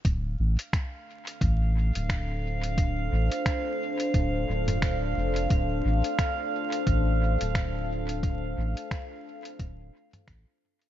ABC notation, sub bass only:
X:1
M:4/4
L:1/16
Q:"Swing 16ths" 1/4=88
K:Dm
V:1 name="Sub bass" clef=bass
D,,,2 A,,, z4 z A,,,3 D,,,4- D,,,- | D,,,2 A,,, z4 z D,,,2 D,,,4 F,,,2 | D,,,2 A,,, z4 z A,,,3 D,,,4- D,,,- | D,,,2 A,,, z4 z D,,,2 z2 A,,, z3 |]